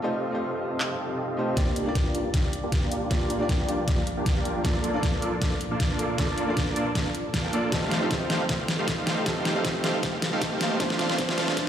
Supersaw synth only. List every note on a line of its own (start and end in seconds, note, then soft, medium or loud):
0.03 1.55 C4 medium
0.03 1.55 G4 medium
0.03 1.55 A4 medium
0.03 1.55 D#5 medium
0.03 1.55 F5 medium
1.57 1.84 A#3 loud
1.86 2.13 A#3 medium
1.86 2.13 D4 medium
1.86 2.13 F4 medium
1.86 2.13 G4 medium
1.86 2.13 D5 loud
2.15 2.28 A#3 medium
2.15 2.28 D4 medium
2.15 2.28 F4 medium
2.15 2.28 G4 medium
2.15 2.28 D5 medium
2.34 2.47 D4 medium
2.34 2.47 D5 medium
2.63 2.80 A#3 medium
2.63 2.80 D4 medium
2.63 2.80 F4 medium
2.63 2.80 G4 medium
2.63 2.80 D5 medium
2.83 3.09 A#3 medium
2.83 3.09 D4 medium
2.83 3.09 F4 medium
2.83 3.09 G4 medium
2.83 3.09 D5 medium
3.11 3.38 A#3 loud
3.11 3.38 F4 medium
3.11 3.38 G4 medium
3.40 3.66 A#3 medium
3.40 3.66 D4 medium
3.40 3.66 F4 medium
3.40 3.66 G4 medium
3.40 3.66 D5 loud
3.68 3.82 A#3 medium
3.68 3.82 D4 medium
3.68 3.82 F4 medium
3.68 3.82 G4 medium
3.68 3.82 D5 medium
3.88 4.01 A#3 medium
3.88 4.01 D4 medium
3.88 4.01 F4 medium
3.88 4.01 G4 medium
3.88 4.01 D5 medium
4.17 4.34 A#3 medium
4.17 4.34 D4 medium
4.17 4.34 F4 medium
4.17 4.34 G4 medium
4.17 4.34 D5 medium
4.36 4.62 A#3 medium
4.36 4.62 D4 medium
4.36 4.62 F4 medium
4.36 4.62 G4 medium
4.36 4.62 D5 medium
4.65 4.92 A#3 loud
4.65 4.92 D4 medium
4.65 4.92 D5 loud
4.94 5.20 A#3 medium
4.94 5.20 D4 medium
4.94 5.20 F4 medium
4.94 5.20 A4 medium
4.94 5.20 D5 loud
5.22 5.36 A#3 medium
5.22 5.36 D4 medium
5.22 5.36 F4 medium
5.22 5.36 A4 medium
5.22 5.36 D5 medium
5.41 5.55 A#3 medium
5.41 5.55 D4 medium
5.41 5.55 F4 medium
5.41 5.55 A4 medium
5.41 5.55 D5 medium
5.71 5.88 A#3 medium
5.71 5.88 D4 medium
5.71 5.88 F4 medium
5.71 5.88 A4 medium
5.71 5.88 D5 medium
5.90 6.16 A#3 medium
5.90 6.16 D4 medium
5.90 6.16 F4 medium
5.90 6.16 A4 medium
5.90 6.16 D5 medium
6.18 6.45 A#3 loud
6.18 6.45 D4 medium
6.18 6.45 F4 medium
6.18 6.45 A4 medium
6.18 6.45 D5 loud
6.48 6.74 A#3 medium
6.48 6.74 D4 medium
6.48 6.74 F4 medium
6.48 6.74 A4 medium
6.48 6.74 D5 loud
6.76 6.89 A#3 medium
6.76 6.89 D4 medium
6.76 6.89 F4 medium
6.76 6.89 A4 medium
6.76 6.89 D5 medium
6.95 7.09 D4 medium
6.95 7.09 F4 medium
6.95 7.09 D5 medium
7.34 7.42 A#3 medium
7.34 7.42 D4 medium
7.34 7.42 F4 medium
7.34 7.42 A4 medium
7.34 7.42 F5 loud
7.44 7.52 A#3 medium
7.44 7.52 D4 medium
7.44 7.52 F4 medium
7.44 7.52 A4 medium
7.44 7.52 G5 medium
7.53 7.70 A#3 medium
7.53 7.70 D4 medium
7.53 7.70 F4 medium
7.53 7.70 A4 medium
7.53 7.70 D5 medium
7.72 7.99 G4 medium
8.02 8.28 A3 medium
8.02 8.28 D#4 medium
8.02 8.28 G4 medium
8.02 8.28 C5 medium
8.02 8.28 F5 loud
8.30 8.43 A3 medium
8.30 8.43 D#4 medium
8.30 8.43 G4 medium
8.30 8.43 C5 medium
8.30 8.43 F5 medium
8.49 8.63 A3 medium
8.49 8.63 D#4 medium
8.49 8.63 G4 medium
8.49 8.63 C5 medium
8.49 8.63 F5 medium
8.79 8.96 A3 medium
8.79 8.96 D#4 medium
8.79 8.96 G4 medium
8.79 8.96 C5 medium
8.79 8.96 F5 medium
8.98 9.24 A3 medium
8.98 9.24 D#4 medium
8.98 9.24 G4 medium
8.98 9.24 C5 medium
8.98 9.24 F5 medium
9.56 9.82 A3 medium
9.56 9.82 D#4 medium
9.56 9.82 G4 medium
9.56 9.82 C5 medium
9.56 9.82 F5 loud
9.84 9.97 A3 medium
9.84 9.97 D#4 medium
9.84 9.97 G4 medium
9.84 9.97 C5 medium
9.84 9.97 F5 medium
10.33 10.49 A3 medium
10.33 10.49 D#4 medium
10.33 10.49 G4 medium
10.33 10.49 C5 medium
10.33 10.49 F5 loud
10.52 10.78 A3 medium
10.52 10.78 D#4 medium
10.52 10.78 G4 medium
10.52 10.78 C5 medium
10.52 10.78 F5 medium
10.80 11.07 A3 loud
10.80 11.07 D4 medium
10.80 11.07 F4 medium
10.80 11.07 C5 medium
10.80 11.07 F5 loud
11.10 11.36 A3 medium
11.10 11.36 D4 medium
11.10 11.36 F4 medium
11.10 11.36 C5 medium
11.10 11.36 F5 loud
11.38 11.51 A3 medium
11.38 11.51 D4 medium
11.38 11.51 F4 medium
11.38 11.51 C5 medium
11.38 11.51 F5 medium
11.57 11.69 A3 medium
11.57 11.69 D4 medium
11.57 11.69 F4 medium
11.57 11.69 C5 medium
11.57 11.69 F5 medium